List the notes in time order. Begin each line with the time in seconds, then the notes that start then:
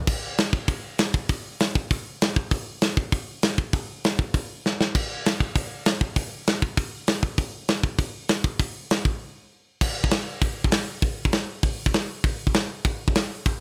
0.07 kick, crash
0.38 snare, open hi-hat
0.53 kick
0.68 kick, open hi-hat
0.98 snare, open hi-hat
1.14 kick
1.29 kick, open hi-hat
1.60 snare, open hi-hat
1.75 kick
1.91 kick, open hi-hat
2.21 snare, open hi-hat
2.36 kick
2.51 kick, open hi-hat
2.81 snare, open hi-hat
2.97 kick
3.12 kick, open hi-hat
3.43 snare, open hi-hat
3.58 kick
3.73 kick, open hi-hat
4.04 snare, open hi-hat
4.19 kick
4.34 kick, open hi-hat
4.66 snare
4.81 snare
4.95 kick, crash
5.26 snare, open hi-hat
5.40 kick
5.56 kick, open hi-hat
5.86 snare, open hi-hat
6.01 kick
6.16 kick, open hi-hat
6.47 snare, open hi-hat
6.62 kick
6.77 kick, open hi-hat
7.07 snare, open hi-hat
7.23 kick
7.38 kick, open hi-hat
7.68 snare, open hi-hat
7.83 kick
7.98 kick, open hi-hat
8.29 snare, open hi-hat
8.44 kick
8.60 kick, open hi-hat
8.90 snare, open hi-hat
9.05 kick
9.81 kick, crash
10.04 kick
10.11 snare, open hi-hat
10.42 kick, open hi-hat
10.64 kick
10.71 snare, open hi-hat
11.02 kick, open hi-hat
11.25 kick
11.32 snare, open hi-hat
11.63 kick, open hi-hat
11.86 kick
11.94 snare, open hi-hat
12.24 kick, open hi-hat
12.47 kick
12.54 snare, open hi-hat
12.85 kick, open hi-hat
13.08 kick
13.15 snare, open hi-hat
13.46 kick, open hi-hat